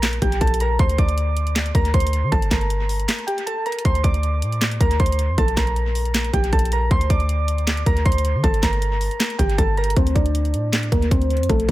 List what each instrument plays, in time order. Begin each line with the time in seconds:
Already playing: 808-style bass A#1, synth keys A#4 A#5
0.03 snare, clap, closed hi-hat
0.13 closed hi-hat
0.22 808-style bass A#1, synth keys G4 G5, kick, closed hi-hat
0.32 closed hi-hat
0.41 808-style bass A#1, synth keys A4 A5, kick, closed hi-hat
0.47 closed hi-hat
0.54 closed hi-hat
0.60 synth keys A#4 A#5, closed hi-hat
0.79 808-style bass D2, synth keys C5 C6, kick, closed hi-hat
0.89 closed hi-hat
0.98 808-style bass D2, synth keys D5 D6, kick, closed hi-hat
1.09 closed hi-hat
1.18 closed hi-hat
1.37 closed hi-hat
1.47 closed hi-hat
1.56 snare, clap, closed hi-hat
1.66 closed hi-hat
1.75 808-style bass D2, synth keys A#4 A#5, kick, closed hi-hat
1.85 closed hi-hat
1.94 808-style bass D2, synth keys C5 C6, kick, closed hi-hat
2.00 closed hi-hat
2.07 closed hi-hat
2.13 closed hi-hat
2.23 808-style bass D3
2.32 808-style bass G1, synth keys A4 A5, kick, closed hi-hat
2.42 closed hi-hat
2.51 808-style bass G1, synth keys A#4 A#5, kick, snare, clap, closed hi-hat
2.61 closed hi-hat
2.70 closed hi-hat
2.89 open hi-hat
3.00 closed hi-hat
3.08 snare, clap, closed hi-hat
3.19 closed hi-hat
3.27 synth keys G4 G5, closed hi-hat
3.38 closed hi-hat
3.47 synth keys A4 A5, closed hi-hat
3.66 synth keys A#4 A#5, closed hi-hat
3.72 closed hi-hat
3.79 closed hi-hat
3.85 808-style bass D2, synth keys C5 C6, kick, closed hi-hat
3.95 closed hi-hat
4.04 808-style bass D2, synth keys D5 D6, kick, closed hi-hat
4.14 closed hi-hat
4.23 closed hi-hat
4.42 808-style bass A2, closed hi-hat
4.52 closed hi-hat
4.61 snare, clap, closed hi-hat
4.71 closed hi-hat
4.81 808-style bass D2, synth keys A#4 A#5, kick, closed hi-hat
4.91 closed hi-hat
5.00 808-style bass D2, synth keys C5 C6, kick, closed hi-hat
5.06 closed hi-hat
5.12 closed hi-hat
5.19 closed hi-hat
5.29 808-style bass F2
5.38 808-style bass A#1, synth keys A4 A5, kick, closed hi-hat
5.48 closed hi-hat
5.57 808-style bass A#1, synth keys A#4 A#5, kick, snare, clap, closed hi-hat
5.67 closed hi-hat
5.76 closed hi-hat
5.95 open hi-hat
6.05 closed hi-hat
6.14 snare, clap, closed hi-hat
6.24 closed hi-hat
6.33 808-style bass A#1, synth keys G4 G5, kick, closed hi-hat
6.44 closed hi-hat
6.53 808-style bass A#1, synth keys A4 A5, kick, closed hi-hat
6.59 closed hi-hat
6.65 closed hi-hat
6.72 synth keys A#4 A#5, closed hi-hat
6.91 808-style bass D2, synth keys C5 C6, kick, closed hi-hat
7.01 closed hi-hat
7.10 808-style bass D2, synth keys D5 D6, kick, closed hi-hat
7.20 closed hi-hat
7.29 closed hi-hat
7.48 closed hi-hat
7.58 closed hi-hat
7.67 snare, clap, closed hi-hat
7.77 closed hi-hat
7.86 808-style bass D2, synth keys A#4 A#5, kick, closed hi-hat
7.97 closed hi-hat
8.05 808-style bass D2, synth keys C5 C6, kick, closed hi-hat
8.12 closed hi-hat
8.18 closed hi-hat
8.25 closed hi-hat
8.35 808-style bass D3
8.44 808-style bass G1, synth keys A4 A5, kick, closed hi-hat
8.54 closed hi-hat
8.63 808-style bass G1, synth keys A#4 A#5, kick, snare, clap, closed hi-hat
8.73 closed hi-hat
8.82 closed hi-hat
9.01 open hi-hat
9.11 closed hi-hat
9.20 snare, clap, closed hi-hat
9.30 closed hi-hat
9.39 808-style bass G1, synth keys G4 G5, kick, closed hi-hat
9.50 closed hi-hat
9.58 808-style bass G1, synth keys A4 A5, kick, closed hi-hat
9.77 synth keys A#4 A#5, closed hi-hat
9.84 closed hi-hat
9.90 closed hi-hat
9.96 808-style bass D2, synth keys C4 C5, kick, closed hi-hat
10.07 closed hi-hat
10.15 808-style bass D2, synth keys D4 D5, kick, closed hi-hat
10.26 closed hi-hat
10.35 closed hi-hat
10.45 closed hi-hat
10.54 808-style bass A2, closed hi-hat
10.73 snare, clap, closed hi-hat
10.83 closed hi-hat
10.92 808-style bass D2, synth keys A#3 A#4, kick, closed hi-hat
11.02 closed hi-hat
11.11 808-style bass D2, synth keys C4 C5, kick, closed hi-hat
11.22 closed hi-hat
11.30 closed hi-hat
11.37 808-style bass F2, closed hi-hat
11.43 closed hi-hat
11.49 808-style bass A#1, synth keys A3 A4, kick, closed hi-hat
11.60 closed hi-hat
11.69 808-style bass A#1, kick